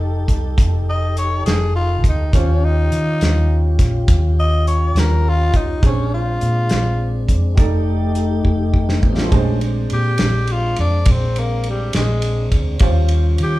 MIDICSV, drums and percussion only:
0, 0, Header, 1, 2, 480
1, 0, Start_track
1, 0, Tempo, 582524
1, 1922, Time_signature, 12, 3, 24, 8
1, 11201, End_track
2, 0, Start_track
2, 0, Title_t, "Drums"
2, 233, Note_on_c, 9, 36, 66
2, 237, Note_on_c, 9, 42, 54
2, 315, Note_off_c, 9, 36, 0
2, 319, Note_off_c, 9, 42, 0
2, 476, Note_on_c, 9, 36, 100
2, 482, Note_on_c, 9, 42, 73
2, 559, Note_off_c, 9, 36, 0
2, 564, Note_off_c, 9, 42, 0
2, 962, Note_on_c, 9, 42, 55
2, 1045, Note_off_c, 9, 42, 0
2, 1204, Note_on_c, 9, 42, 68
2, 1216, Note_on_c, 9, 38, 97
2, 1286, Note_off_c, 9, 42, 0
2, 1298, Note_off_c, 9, 38, 0
2, 1680, Note_on_c, 9, 36, 71
2, 1685, Note_on_c, 9, 42, 58
2, 1762, Note_off_c, 9, 36, 0
2, 1767, Note_off_c, 9, 42, 0
2, 1922, Note_on_c, 9, 36, 92
2, 1927, Note_on_c, 9, 42, 72
2, 2004, Note_off_c, 9, 36, 0
2, 2009, Note_off_c, 9, 42, 0
2, 2405, Note_on_c, 9, 42, 59
2, 2488, Note_off_c, 9, 42, 0
2, 2646, Note_on_c, 9, 42, 73
2, 2658, Note_on_c, 9, 38, 90
2, 2728, Note_off_c, 9, 42, 0
2, 2740, Note_off_c, 9, 38, 0
2, 3123, Note_on_c, 9, 36, 71
2, 3123, Note_on_c, 9, 42, 55
2, 3135, Note_on_c, 9, 38, 27
2, 3205, Note_off_c, 9, 36, 0
2, 3205, Note_off_c, 9, 42, 0
2, 3218, Note_off_c, 9, 38, 0
2, 3362, Note_on_c, 9, 42, 77
2, 3363, Note_on_c, 9, 36, 109
2, 3445, Note_off_c, 9, 36, 0
2, 3445, Note_off_c, 9, 42, 0
2, 3850, Note_on_c, 9, 42, 51
2, 3933, Note_off_c, 9, 42, 0
2, 4086, Note_on_c, 9, 42, 67
2, 4099, Note_on_c, 9, 38, 92
2, 4169, Note_off_c, 9, 42, 0
2, 4181, Note_off_c, 9, 38, 0
2, 4561, Note_on_c, 9, 42, 53
2, 4563, Note_on_c, 9, 36, 75
2, 4643, Note_off_c, 9, 42, 0
2, 4645, Note_off_c, 9, 36, 0
2, 4803, Note_on_c, 9, 36, 99
2, 4804, Note_on_c, 9, 42, 69
2, 4885, Note_off_c, 9, 36, 0
2, 4886, Note_off_c, 9, 42, 0
2, 5284, Note_on_c, 9, 42, 53
2, 5366, Note_off_c, 9, 42, 0
2, 5515, Note_on_c, 9, 42, 72
2, 5527, Note_on_c, 9, 38, 95
2, 5598, Note_off_c, 9, 42, 0
2, 5610, Note_off_c, 9, 38, 0
2, 6003, Note_on_c, 9, 36, 67
2, 6005, Note_on_c, 9, 42, 59
2, 6085, Note_off_c, 9, 36, 0
2, 6087, Note_off_c, 9, 42, 0
2, 6241, Note_on_c, 9, 42, 80
2, 6242, Note_on_c, 9, 36, 102
2, 6323, Note_off_c, 9, 42, 0
2, 6325, Note_off_c, 9, 36, 0
2, 6716, Note_on_c, 9, 42, 57
2, 6799, Note_off_c, 9, 42, 0
2, 6960, Note_on_c, 9, 36, 53
2, 7042, Note_off_c, 9, 36, 0
2, 7198, Note_on_c, 9, 36, 64
2, 7281, Note_off_c, 9, 36, 0
2, 7325, Note_on_c, 9, 38, 68
2, 7407, Note_off_c, 9, 38, 0
2, 7440, Note_on_c, 9, 36, 81
2, 7522, Note_off_c, 9, 36, 0
2, 7563, Note_on_c, 9, 38, 81
2, 7645, Note_off_c, 9, 38, 0
2, 7679, Note_on_c, 9, 36, 93
2, 7679, Note_on_c, 9, 51, 64
2, 7761, Note_off_c, 9, 36, 0
2, 7761, Note_off_c, 9, 51, 0
2, 7920, Note_on_c, 9, 51, 52
2, 8002, Note_off_c, 9, 51, 0
2, 8156, Note_on_c, 9, 51, 52
2, 8238, Note_off_c, 9, 51, 0
2, 8386, Note_on_c, 9, 51, 73
2, 8398, Note_on_c, 9, 38, 105
2, 8468, Note_off_c, 9, 51, 0
2, 8481, Note_off_c, 9, 38, 0
2, 8631, Note_on_c, 9, 51, 56
2, 8713, Note_off_c, 9, 51, 0
2, 8869, Note_on_c, 9, 51, 56
2, 8951, Note_off_c, 9, 51, 0
2, 9109, Note_on_c, 9, 51, 85
2, 9115, Note_on_c, 9, 36, 106
2, 9191, Note_off_c, 9, 51, 0
2, 9197, Note_off_c, 9, 36, 0
2, 9359, Note_on_c, 9, 51, 62
2, 9441, Note_off_c, 9, 51, 0
2, 9588, Note_on_c, 9, 51, 56
2, 9670, Note_off_c, 9, 51, 0
2, 9831, Note_on_c, 9, 51, 75
2, 9843, Note_on_c, 9, 38, 91
2, 9913, Note_off_c, 9, 51, 0
2, 9925, Note_off_c, 9, 38, 0
2, 10069, Note_on_c, 9, 51, 61
2, 10151, Note_off_c, 9, 51, 0
2, 10314, Note_on_c, 9, 36, 71
2, 10314, Note_on_c, 9, 51, 58
2, 10396, Note_off_c, 9, 36, 0
2, 10397, Note_off_c, 9, 51, 0
2, 10542, Note_on_c, 9, 51, 72
2, 10551, Note_on_c, 9, 36, 99
2, 10624, Note_off_c, 9, 51, 0
2, 10634, Note_off_c, 9, 36, 0
2, 10782, Note_on_c, 9, 51, 60
2, 10864, Note_off_c, 9, 51, 0
2, 11027, Note_on_c, 9, 51, 58
2, 11109, Note_off_c, 9, 51, 0
2, 11201, End_track
0, 0, End_of_file